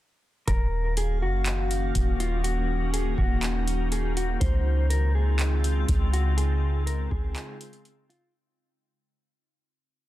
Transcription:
0.47 808-style bass D#1, ambient pad D#3 A#3 C#4 F#4 F5, clean electric guitar A#4, kick, closed hi-hat
0.97 clean electric guitar G#4, closed hi-hat
1.21 808-style bass F#1, clean electric guitar F#4
1.46 clap, closed hi-hat
1.71 closed hi-hat
1.95 808-style bass D#1, kick, closed hi-hat
2.20 clean electric guitar F4, closed hi-hat
2.44 ambient pad D#4, clean electric guitar F#4, closed hi-hat
2.94 clean electric guitar G#4, closed hi-hat
3.18 808-style bass D#1, clean electric guitar F#4, kick
3.43 clap, closed hi-hat
3.67 closed hi-hat
3.92 clean electric guitar G#4, closed hi-hat
4.17 clean electric guitar F#4, closed hi-hat
4.40 808-style bass C#2, ambient pad C#3 G#3 C4 F4, clean electric guitar C5, kick, closed hi-hat
4.90 clean electric guitar A#4, closed hi-hat
5.15 clean electric guitar G#4
5.39 clap, closed hi-hat
5.64 closed hi-hat
5.88 808-style bass C#2, kick, closed hi-hat
6.13 clean electric guitar F#4, closed hi-hat
6.37 clean electric guitar G#4, closed hi-hat
6.86 clean electric guitar A#4, closed hi-hat
7.11 808-style bass C#2, clean electric guitar G#4, kick
7.36 clap, closed hi-hat
7.61 closed hi-hat
7.73 closed hi-hat
7.85 closed hi-hat
8.10 clean electric guitar F4, closed hi-hat

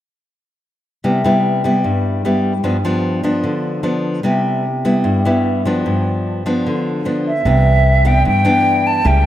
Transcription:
1.04 nylon-string guitar C3 G3 B3 E4
1.24 nylon-string guitar G3 B3 E4
1.64 nylon-string guitar G3 B3 E4
1.84 nylon-string guitar G2
2.25 nylon-string guitar G3 B3 E4
2.64 nylon-string guitar G2 F3 B3 D4
2.85 nylon-string guitar F3 B3 D4
3.23 nylon-string guitar F3 B3 D4
3.44 nylon-string guitar D3
3.83 nylon-string guitar F3 B3 D4
4.23 nylon-string guitar C3 G3 B3 E4
4.85 nylon-string guitar G3 B3 E4
5.04 nylon-string guitar G2
5.25 nylon-string guitar G3 B3 E4
5.65 nylon-string guitar F3 B3 D4
5.86 nylon-string guitar G2
6.46 nylon-string guitar F3 B3 D4
6.67 nylon-string guitar D3
7.05 nylon-string guitar F3 B3 D4
7.27 flute E5
7.45 upright bass C2, nylon-string guitar C3 E3 B3 D4
8.05 nylon-string guitar E3 B3 D4, flute G5
8.25 upright bass G2, nylon-string guitar G2, flute G5
8.45 nylon-string guitar E3 B3 D4
8.87 flute A5
9.04 upright bass C#2, nylon-string guitar C#3 G3 A#3 E4, flute G5

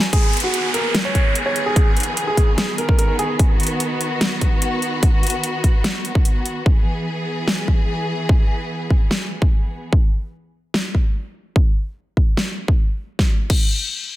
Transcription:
Already playing: string section F#4
0.03 closed hi-hat
0.13 string section D#3 B3 G#4, grand piano G#4, kick, closed hi-hat, downlifter
0.33 closed hi-hat
0.37 closed hi-hat
0.40 grand piano F#4, closed hi-hat
0.54 closed hi-hat
0.74 grand piano A#4, closed hi-hat
0.95 snare, closed hi-hat
1.05 grand piano C#5
1.15 kick, closed hi-hat
1.35 closed hi-hat
1.46 grand piano C#5
1.56 closed hi-hat
1.66 grand piano G#4
1.76 kick, closed hi-hat
1.97 closed hi-hat
2.00 closed hi-hat
2.03 closed hi-hat
2.17 closed hi-hat
2.27 grand piano G#4
2.37 kick, closed hi-hat
2.58 grand piano G#4, snare, closed hi-hat
2.78 grand piano A#4, closed hi-hat
2.89 kick
2.99 grand piano A#4, closed hi-hat
3.19 grand piano G#4, closed hi-hat
3.39 string section F#4, kick, closed hi-hat
3.60 closed hi-hat
3.63 closed hi-hat
3.67 closed hi-hat
3.80 closed hi-hat
4.01 closed hi-hat
4.21 snare, closed hi-hat
4.41 kick, closed hi-hat
4.62 closed hi-hat
4.82 closed hi-hat
5.03 kick, closed hi-hat
5.23 closed hi-hat
5.27 closed hi-hat
5.30 closed hi-hat
5.44 closed hi-hat
5.64 kick, closed hi-hat
5.84 snare, closed hi-hat
6.05 closed hi-hat
6.15 kick
6.25 closed hi-hat
6.46 closed hi-hat
6.66 string section E3 G#4, kick
7.48 snare
7.68 kick
8.29 kick
8.90 kick
9.11 snare
9.42 kick
9.93 kick
10.74 snare
10.95 kick
11.56 kick
12.17 kick
12.37 snare
12.68 kick
13.19 kick, snare
13.50 kick, crash

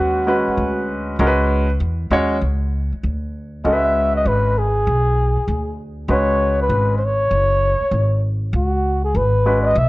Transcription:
Already playing: upright bass D#2, grand piano G#3 C#4 F#4 B4, flugelhorn F#4
0.27 grand piano G#3 C#4 F#4 B4
0.48 muted upright bass stroke
0.57 upright bass D2
1.19 upright bass C#2, grand piano G#3 C#4 F#4 A#4
1.27 grand piano B4
1.80 upright bass E2
2.11 upright bass D#2, grand piano G#3 C#4 F#4 C#5
2.41 upright bass C#2
2.92 muted upright bass stroke
3.03 upright bass D2
3.64 upright bass C#2, grand piano G#3 C#4 F#4 A4, flugelhorn E5
3.73 grand piano B4
4.16 flugelhorn D#5
4.25 upright bass G#1, flugelhorn B4
4.58 flugelhorn G#4
4.87 upright bass B1
5.37 muted upright bass stroke
5.48 upright bass D2
6.08 upright bass C#2, grand piano G#3 C#4 F#4 B4, flugelhorn C#5
6.62 flugelhorn B4
6.69 upright bass G#1
6.98 flugelhorn C5
7.05 flugelhorn C#5
7.31 upright bass F#1
7.81 muted upright bass stroke
7.91 upright bass G#1
8.53 upright bass C#2, flugelhorn F#4
9.04 flugelhorn G#4
9.15 upright bass G#1, flugelhorn B4
9.46 grand piano G#3 C#4 F#4 B4
9.62 flugelhorn D5
9.66 flugelhorn D#5
9.76 upright bass B1, flugelhorn E5

